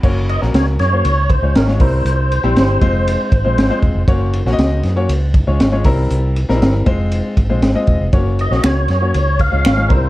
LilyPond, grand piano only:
\new Staff \with { instrumentName = "Grand piano" } { \time 4/4 \key ges \lydian \tempo 4 = 118 <bes des' ges' des''>8 r16 <bes des' ges' bes'>8. r16 <bes des' ges' c''>16 r8. <aes des' f' des''>8 <aes des' f' des''>16 <g c' e' bes'>8~ | <g c' e' bes'>8 r16 <g c' e' g'>8. <aes c' f' c''>4 r16 <aes c' f' c''>8 <aes c' f' c''>8 r16 | <bes des' ges' des''>8 r16 <bes des' ges' des'' ees''>8. r16 <bes des' ges' des''>16 r8. <aes des' f' des''>8 <aes des' f' des''>16 <g c' e' bes'>8~ | <g c' e' bes'>8 r16 <g c' ees' e' bes'>8. <aes c' f' c''>4 r16 <aes c' f' c''>8 <aes c' f' ees''>8 r16 |
<bes des' ges' des''>8 r16 <bes des' ges' des''>8. r16 <bes des' ges' des''>16 r8. <aes des' f' des''>8 <aes des' f' des''>16 <g c' d' e' bes'>8 | }